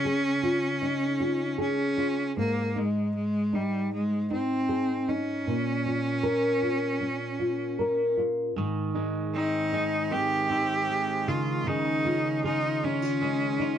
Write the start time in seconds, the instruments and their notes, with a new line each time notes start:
Already playing: nylon-string guitar C#3 F4, cello C#4
0.05 nylon-string guitar G#4
0.43 nylon-string guitar F4
0.81 nylon-string guitar D#4
1.20 nylon-string guitar F4
1.58 cello C#4, nylon-string guitar G#4
1.97 nylon-string guitar F4
2.36 nylon-string guitar G#2, cello A#3
2.75 cello G#3, nylon-string guitar D#4
3.15 cello G#3
3.53 cello G3, nylon-string guitar D#4
3.93 cello G#3
4.31 cello C4, nylon-string guitar D#4
4.69 nylon-string guitar G#4
5.08 cello C#4, nylon-string guitar D#4
5.47 nylon-string guitar A#2
5.86 nylon-string guitar F4
6.23 nylon-string guitar A#4
6.62 nylon-string guitar F4
7.00 nylon-string guitar C#4
7.39 nylon-string guitar F4
7.79 nylon-string guitar A#4
8.17 nylon-string guitar F4
8.56 nylon-string guitar G#2, clean electric guitar D#3
8.94 clean electric guitar G#3, nylon-string guitar D#4
9.35 clean electric guitar C4, cello D#4
9.72 clean electric guitar G#3, nylon-string guitar D#4
10.11 clean electric guitar D#3, nylon-string guitar C4, cello G4
10.50 clean electric guitar C4, nylon-string guitar D#4
10.90 clean electric guitar G#3
11.27 nylon-string guitar C#3, clean electric guitar D#3, cello F4
11.67 nylon-string guitar C#3, clean electric guitar D#3, cello D#4
12.05 clean electric guitar C#4, nylon-string guitar F4
12.44 cello D#4, clean electric guitar F4, nylon-string guitar G#4
12.84 cello C#4, clean electric guitar C#4, nylon-string guitar D#4
13.02 nylon-string guitar F4
13.21 clean electric guitar G#3, nylon-string guitar D#4
13.59 nylon-string guitar D#4, clean electric guitar F4